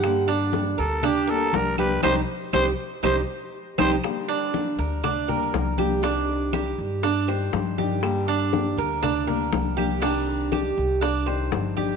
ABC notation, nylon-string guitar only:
X:1
M:4/4
L:1/8
Q:1/4=120
K:Cdor
V:1 name="Nylon-string guitar"
[D,G,B,DG]2 [G,B,DG]2 z [G,B,DG] [G,B,DG] [G,B,DG] | [E,G,C] z [E,G,C] z [E,G,C] z2 [E,G,C] | [K:Gm] [D,G,B,DG]2 [G,B,DG]2 z [G,B,DG] [G,B,DG] [G,B,DG] | [C,E,G,DG]2 [E,G,DG]2 z [E,G,DG] [E,G,DG] [E,G,DG] |
[D,G,B,DG]2 [G,B,DG]2 z [G,B,DG] [G,B,DG] [G,B,DG] | [C,E,G,DG]2 [E,G,DG]2 z [E,G,DG] [E,G,DG] [E,G,DG] |]